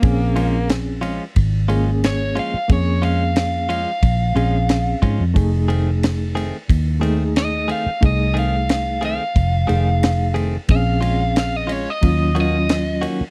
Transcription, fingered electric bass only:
X:1
M:4/4
L:1/16
Q:1/4=90
K:Bbm
V:1 name="Fingered electric bass" clef=bass
B,,,8 A,,,6- A,,, z | F,,8 B,,,2 B,,,4 A,, F,, | F,,,8 E,,6- E,, z | C,,8 F,,,2 F,,,6 |
B,,,8 E,,6- E,, z |]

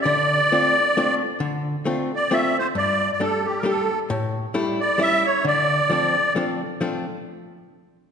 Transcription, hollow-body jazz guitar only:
X:1
M:3/4
L:1/8
Q:"Swing" 1/4=133
K:Dm
V:1 name="Hollow-body jazz guitar"
D,2 [A,CDF] z [A,CDF] z | D,2 [A,CDF] z [A,CDF] z | G,,2 [G,A,DG] z [G,A,DG] z | A,,2 [G,A,DE] z [G,A,^CE] z |
D,2 [F,A,CD] z [F,A,CD] z | [F,A,CD] z4 z |]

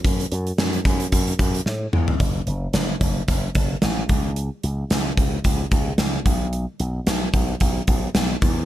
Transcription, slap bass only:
X:1
M:4/4
L:1/8
Q:"Swing 16ths" 1/4=111
K:F#m
V:1 name="Slap bass" clef=bass
F,, F,, F,, F,, F,, F,, A,, E,, | F,,, F,,, F,,, F,,, F,,, F,,, A,,, C,,- | C,, C,, C,, C,, C,, C,, C,, B,,,- | B,,, B,,, B,,, B,,, B,,, B,,, B,,, E,, |]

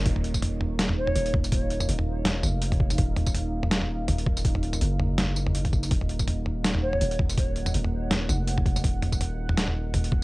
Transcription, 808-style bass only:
X:1
M:4/4
L:1/8
Q:"Swing 16ths" 1/4=164
K:Ebm
V:1 name="808-style bass" clef=bass
E,,,6 E,,,2- | E,,,2 E,,,3 F,,,3 | E,,,6 E,,,2- | E,,,2 G,,,6 |
E,,,6 E,,,2- | E,,,2 E,,,3 F,,,3 | E,,,6 E,,,2 |]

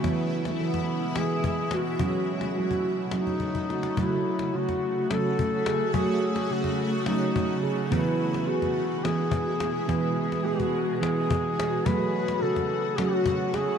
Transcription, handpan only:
X:1
M:7/8
L:1/8
Q:1/4=106
K:F#dor
V:1 name="Handpan"
B,2 E2 B,2 F | C2 F2 C2 F | A,2 F2 C2 G | A,2 F2 C2 G |
B,2 G2 B,2 G | B,2 G2 B,2 G | A,2 F2 C2 G |]
V:2 name="Handpan" clef=bass
E,2 E,2 E,3 | F,2 F,2 F,3 | F,2 C,2 F,3 | F,2 C,2 F,3 |
E,2 B,2 E,3 | E,2 B,2 E,3 | F,2 C,2 F,3 |]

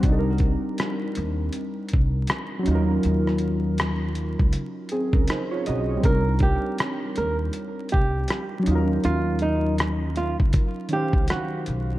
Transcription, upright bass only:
X:1
M:4/4
L:1/16
Q:"Swing 16ths" 1/4=80
K:Eb
V:1 name="Upright bass" clef=bass
C,,3 z3 E,,2 z2 C,,2 z2 E,,2 | E,,6- E,, _D,, z3 D,, z2 =B,,,2 | C,,3 z3 E,,2 z2 C,,2 z2 E,,2 | E,,6- E,, _D,, z3 D,, z2 =B,,,2 |]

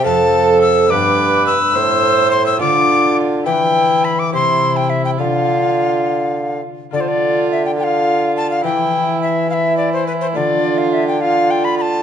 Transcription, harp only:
X:1
M:6/8
L:1/8
Q:3/8=70
K:Ddor
V:1 name="Harp"
[CAf]3 [B,Gd]3 | [A,Ec]3 [A,Fd]3 | [EB]3 [Ec]3 | [FA]6 |
[FA]3 [FA]3 | [EG]6 | [A,F]6 |]
V:2 name="Harp" clef=bass
F,,3 G,,3 | A,,3 D,3 | E,3 C,3 | D,6 |
D,6 | E,6 | D,6 |]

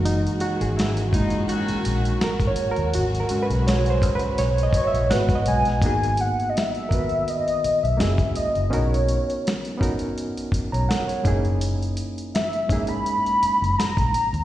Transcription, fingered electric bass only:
X:1
M:4/4
L:1/16
Q:"Swing 16ths" 1/4=83
K:G#m
V:1 name="Fingered electric bass" clef=bass
F,,,2 z G,,,3 F,,,2 z2 A,,,2 z G,,, z D,, | G,,,2 z B,,,3 C,,2 B,,,2 z A,,, G,,, z B,,, A,,, | G,,,3 z8 B,,, F,,, C,, z F,,, | B,,,3 z8 B,,, z2 F,,,2- |
F,,,3 z8 F,,, z A,,, z D,, |]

